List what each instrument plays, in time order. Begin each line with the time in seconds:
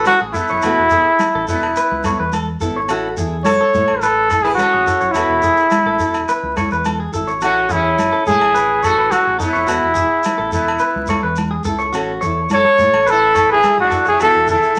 0.05 sitar C#4, trumpet F#4, clean electric guitar A4, high conga, low agogo, shekere
0.21 fingered electric bass A1, clean electric guitar G#4
0.34 sitar B3, trumpet E4, steel-string acoustic guitar E4 A4, clean electric guitar A4, shekere
0.48 fingered electric bass F#1, clean electric guitar C#5, shekere
0.62 fingered electric bass E1, steel-string acoustic guitar A3 B3 E4 A4, clean electric guitar F#4, muted conga, low agogo, shekere
0.78 fingered electric bass E1
0.90 steel-string acoustic guitar E4 A4, clean electric guitar G#4, shekere
0.94 steel-string acoustic guitar B3
1.19 high conga, low agogo, shekere
1.35 fingered electric bass A1, clean electric guitar A4
1.48 fingered electric bass E1, sitar B3, steel-string acoustic guitar B3 E4 A4, trumpet E4, muted conga, shekere
1.63 low agogo
1.76 clean electric guitar B4, muted conga, shekere
1.91 fingered electric bass C#2
2.04 steel-string acoustic guitar B3 E4 A4, clean electric guitar C#5, muted conga, high conga, low agogo, shekere
2.19 fingered electric bass E2, clean electric guitar B4
2.32 clean electric guitar A4, high conga, low agogo, shekere
2.60 fingered electric bass G#1, steel-string acoustic guitar B3 E4 A4, clean electric guitar A4, shekere
2.76 clean electric guitar C#5
2.88 fingered electric bass A1, steel-string acoustic guitar C#4 E4 A4, clean electric guitar F#4, muted conga, low agogo, shekere
3.16 fingered electric bass E2, steel-string acoustic guitar E4 A4, clean electric guitar G#4, shekere
3.44 fingered electric bass F#1, sitar A4, trumpet C#5, high conga, low agogo, shekere
3.61 clean electric guitar A4
3.73 fingered electric bass A2, steel-string acoustic guitar E4 A4, muted conga, high conga, shekere
3.88 fingered electric bass A1, low agogo
4.01 sitar E4, trumpet A4, clean electric guitar B4, muted conga, shekere
4.29 steel-string acoustic guitar E4 A4, muted clean electric guitar stroke, muted conga, low agogo, shekere
4.42 sitar E4, trumpet G#4, clean electric guitar B4
4.55 sitar C#4, trumpet F#4, high conga, shekere
4.59 clean electric guitar A4, low agogo
4.73 fingered electric bass A1, clean electric guitar G#4
4.87 steel-string acoustic guitar E4, clean electric guitar A4, shekere
5.01 fingered electric bass F#1, clean electric guitar C#5, shekere
5.11 fingered electric bass E1, sitar B3, trumpet E4, clean electric guitar F#4, muted conga, shekere
5.15 steel-string acoustic guitar B3 E4 A4, low agogo
5.28 fingered electric bass E1
5.42 steel-string acoustic guitar E4 A4, clean electric guitar G#4, shekere
5.57 shekere
5.71 high conga, low agogo, shekere
5.86 fingered electric bass A1, clean electric guitar A4
5.99 fingered electric bass E1, steel-string acoustic guitar E4 A4, shekere
6.14 low agogo, shekere
6.29 clean electric guitar B4, muted conga, shekere
6.43 fingered electric bass C#2
6.56 steel-string acoustic guitar E4 A4, clean electric guitar C#5, muted conga, high conga, low agogo, shekere
6.71 fingered electric bass E2, clean electric guitar B4, shekere
6.85 clean electric guitar A4, high conga, low agogo, shekere
7.00 clean electric guitar G#4
7.12 fingered electric bass G#1, steel-string acoustic guitar E4 A4, clean electric guitar A4, shekere
7.27 clean electric guitar C#5, shekere
7.41 fingered electric bass A1, steel-string acoustic guitar E4 A4, clean electric guitar F#4, trumpet F#4, muted steel-string acoustic guitar stroke, muted conga, low agogo, shekere
7.45 sitar C#4
7.69 fingered electric bass E2, trumpet E4, steel-string acoustic guitar E4 A4, clean electric guitar G#4, shekere
7.75 sitar C#4
7.98 fingered electric bass F#1, high conga, low agogo, shekere
8.12 clean electric guitar A4
8.26 fingered electric bass A2, steel-string acoustic guitar E4 A4, sitar E4, trumpet G#4, muted conga, high conga, shekere
8.41 fingered electric bass A1, low agogo
8.54 clean electric guitar B4, muted conga, shekere
8.83 steel-string acoustic guitar E4 A4, sitar F#4, trumpet A4, clean electric guitar C#5, muted conga, low agogo, shekere
8.98 clean electric guitar B4
9.11 trumpet F#4, clean electric guitar A4, high conga, low agogo, shekere
9.15 sitar C#4
9.25 fingered electric bass A1, clean electric guitar G#4
9.39 trumpet E4, steel-string acoustic guitar E4 A4, clean electric guitar A4, shekere
9.43 sitar B3
9.53 fingered electric bass F1, clean electric guitar C#5, shekere
9.67 fingered electric bass E1, steel-string acoustic guitar B3 E4 A4, clean electric guitar F#4, muted conga, low agogo, shekere
9.83 fingered electric bass E1
9.94 clean electric guitar G#4, shekere
9.98 steel-string acoustic guitar E4
10.23 high conga, low agogo, shekere
10.38 fingered electric bass A1, clean electric guitar A4
10.52 fingered electric bass E1, sitar B3, trumpet E4, steel-string acoustic guitar E4 A4, muted conga, shekere
10.68 low agogo
10.79 clean electric guitar B4, muted conga, shekere
10.96 fingered electric bass C#2
11.07 steel-string acoustic guitar A4, clean electric guitar C#5, muted conga, high conga, low agogo, shekere
11.12 steel-string acoustic guitar E4
11.23 fingered electric bass E2, clean electric guitar B4
11.36 high conga, low agogo, shekere
11.51 clean electric guitar G#4
11.64 fingered electric bass C#2, steel-string acoustic guitar E4 A4, clean electric guitar A4, shekere
11.79 clean electric guitar C#5, shekere
11.92 fingered electric bass A1, steel-string acoustic guitar C#4 E4 A4, clean electric guitar F#4, muted conga, low agogo, shekere
12.21 fingered electric bass E2, steel-string acoustic guitar A4, clean electric guitar C#5, shekere
12.26 steel-string acoustic guitar E4
12.49 fingered electric bass F#1, trumpet C#5, high conga, low agogo, shekere
12.54 sitar A4
12.65 clean electric guitar A4
12.77 fingered electric bass A2, steel-string acoustic guitar E4 A4, muted conga, high conga, shekere
12.93 fingered electric bass A1, low agogo
13.07 trumpet A4, clean electric guitar B4, muted conga, shekere
13.12 sitar E4
13.35 steel-string acoustic guitar E4 A4, clean electric guitar C#5, muted conga, low agogo, shekere
13.49 trumpet G#4, clean electric guitar B4
13.54 sitar E4
13.63 clean electric guitar A4, high conga, low agogo, shekere
13.78 fingered electric bass A1, trumpet F#4, clean electric guitar G#4
13.84 sitar D4
13.90 steel-string acoustic guitar E4 A4, clean electric guitar A4, shekere
14.05 fingered electric bass F1, trumpet G#4, clean electric guitar C#5, shekere
14.12 sitar E4
14.20 fingered electric bass E1, steel-string acoustic guitar B3 E4 A4, clean electric guitar F#4, trumpet A4, muted conga, low agogo, shekere
14.25 sitar E4
14.35 fingered electric bass E1
14.47 steel-string acoustic guitar E4 A4, clean electric guitar G#4, trumpet A4, low conga, shekere
14.52 sitar E4
14.63 shekere
14.76 shekere